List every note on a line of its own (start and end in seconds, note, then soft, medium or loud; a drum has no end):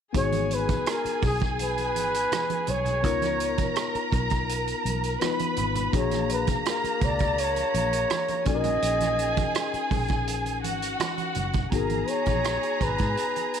0.13 0.75 G#1 medium
0.13 2.99 B3 medium
0.13 3.00 D#4 medium
0.13 3.01 F#4 medium
0.13 3.00 G#4 medium
0.13 3.01 G#4 medium
0.13 3.00 G#5 medium
0.13 kick medium
0.13 closed hi-hat medium
0.13 muted conga soft
0.17 0.56 C#5 medium
0.32 closed hi-hat soft
0.32 muted conga soft
0.32 high conga medium
0.51 0.91 B4 medium
0.51 closed hi-hat medium
0.68 kick medium
0.68 closed hi-hat soft
0.68 high conga medium
0.86 1.25 A#4 medium
0.86 cross-stick loud
0.86 closed hi-hat medium
0.86 muted conga soft
1.04 muted fingered electric bass stroke soft
1.04 closed hi-hat soft
1.04 muted conga soft
1.22 1.96 B1 medium
1.22 kick medium
1.22 open hi-hat soft
1.22 low conga medium
1.26 1.42 G#4 medium
1.40 kick medium
1.40 closed hi-hat soft
1.59 2.71 B4 loud
1.59 closed hi-hat medium
1.59 muted conga soft
1.77 closed hi-hat soft
1.77 muted conga soft
1.96 2.26 G#1 medium
1.96 closed hi-hat medium
1.96 high conga soft
2.14 closed hi-hat medium
2.32 cross-stick loud
2.32 closed hi-hat medium
2.32 high conga medium
2.50 closed hi-hat soft
2.50 high conga medium
2.67 3.04 B1 medium
2.67 4.14 C#5 loud
2.67 closed hi-hat medium
2.67 low conga medium
2.85 closed hi-hat soft
2.85 low conga medium
3.02 3.64 C#2 medium
3.02 5.16 B3 medium
3.02 5.17 D#4 medium
3.02 5.18 F4 medium
3.02 5.17 A#4 medium
3.02 5.18 A#4 medium
3.02 5.17 A#5 medium
3.02 kick medium
3.02 closed hi-hat medium
3.22 cross-stick soft
3.22 closed hi-hat soft
3.22 muted conga soft
3.22 high conga medium
3.40 closed hi-hat medium
3.58 kick medium
3.58 closed hi-hat soft
3.58 high conga medium
3.76 cross-stick medium
3.76 closed hi-hat medium
3.95 muted fingered electric bass stroke soft
3.95 closed hi-hat soft
4.12 4.72 B1 medium
4.12 kick medium
4.12 closed hi-hat medium
4.12 low conga medium
4.30 kick medium
4.30 closed hi-hat soft
4.49 closed hi-hat medium
4.67 closed hi-hat soft
4.85 5.15 B1 medium
4.85 closed hi-hat medium
4.85 high conga soft
5.03 closed hi-hat medium
5.21 5.94 B3 medium
5.21 5.94 D#4 soft
5.21 5.94 F4 soft
5.21 5.92 B4 medium
5.21 5.94 B4 medium
5.21 5.92 B5 medium
5.21 cross-stick medium
5.21 closed hi-hat medium
5.21 high conga medium
5.39 closed hi-hat soft
5.39 muted conga soft
5.39 high conga medium
5.56 5.87 G#1 medium
5.56 closed hi-hat medium
5.56 low conga medium
5.75 closed hi-hat soft
5.75 low conga medium
5.93 6.53 A#1 loud
5.93 8.42 A#3 medium
5.93 8.43 D4 medium
5.93 8.43 F#4 medium
5.93 8.44 G#4 medium
5.93 8.42 A#5 medium
5.93 kick medium
5.93 closed hi-hat medium
5.97 6.29 C#5 medium
6.11 cross-stick soft
6.11 closed hi-hat soft
6.11 muted conga soft
6.11 high conga medium
6.29 6.48 B4 medium
6.29 closed hi-hat medium
6.47 kick medium
6.47 closed hi-hat medium
6.47 high conga medium
6.65 7.06 A#4 medium
6.65 cross-stick loud
6.65 closed hi-hat medium
6.65 muted conga soft
6.84 muted fingered electric bass stroke soft
6.84 closed hi-hat soft
6.84 muted conga soft
7.01 7.62 C#2 medium
7.01 7.41 D5 medium
7.01 kick medium
7.01 closed hi-hat medium
7.01 low conga medium
7.19 kick medium
7.19 closed hi-hat soft
7.38 8.48 C#5 medium
7.38 closed hi-hat medium
7.56 closed hi-hat medium
7.56 muted conga soft
7.74 8.04 A#1 medium
7.74 closed hi-hat medium
7.74 high conga soft
7.93 closed hi-hat medium
8.10 cross-stick loud
8.10 closed hi-hat medium
8.10 high conga medium
8.28 closed hi-hat soft
8.28 high conga medium
8.45 8.76 A#1 medium
8.45 11.32 C#4 medium
8.45 11.32 D#4 medium
8.45 11.33 F#4 soft
8.45 10.59 G#4 medium
8.45 8.54 A4 medium
8.45 9.88 D#5 loud
8.45 10.59 G#5 medium
8.45 kick medium
8.45 closed hi-hat medium
8.45 low conga medium
8.55 11.37 A#4 medium
8.64 closed hi-hat soft
8.64 low conga medium
8.82 9.43 A#1 medium
8.82 closed hi-hat medium
8.82 muted conga soft
9.00 cross-stick soft
9.00 closed hi-hat soft
9.00 high conga medium
9.19 closed hi-hat medium
9.37 kick medium
9.37 closed hi-hat soft
9.37 high conga medium
9.55 cross-stick loud
9.55 closed hi-hat medium
9.55 muted conga soft
9.73 muted fingered electric bass stroke soft
9.73 closed hi-hat soft
9.73 muted conga soft
9.91 10.64 A#1 medium
9.91 kick medium
9.91 open hi-hat soft
9.91 low conga medium
10.08 kick medium
10.08 closed hi-hat soft
10.27 closed hi-hat medium
10.27 muted conga soft
10.46 closed hi-hat soft
10.46 muted conga soft
10.64 10.94 G#1 medium
10.64 11.70 F#4 medium
10.64 11.70 F#5 medium
10.64 closed hi-hat medium
10.64 high conga soft
10.82 closed hi-hat medium
11.00 cross-stick loud
11.00 closed hi-hat medium
11.00 muted conga soft
11.00 high conga medium
11.18 closed hi-hat soft
11.18 high conga medium
11.35 11.66 F#1 medium
11.35 closed hi-hat medium
11.35 low conga medium
11.53 kick medium
11.53 closed hi-hat soft
11.53 low conga medium
11.71 12.02 G#1 medium
11.71 13.60 B3 medium
11.71 13.60 D#4 medium
11.71 13.60 F#4 medium
11.71 13.60 G#4 medium
11.71 12.11 A#4 medium
11.71 13.60 A#5 medium
11.71 kick medium
11.71 closed hi-hat medium
11.71 muted conga soft
11.90 closed hi-hat soft
11.90 high conga medium
12.07 12.84 C#5 loud
12.07 closed hi-hat medium
12.26 12.57 A#1 medium
12.26 kick medium
12.26 closed hi-hat soft
12.26 high conga medium
12.44 cross-stick medium
12.44 closed hi-hat medium
12.63 closed hi-hat soft
12.81 12.96 G#1 medium
12.81 13.60 B4 medium
12.81 kick medium
12.81 closed hi-hat soft
12.98 13.14 G#2 medium
12.98 kick medium
12.98 closed hi-hat soft
13.17 closed hi-hat medium
13.36 closed hi-hat soft
13.36 muted conga soft
13.54 closed hi-hat medium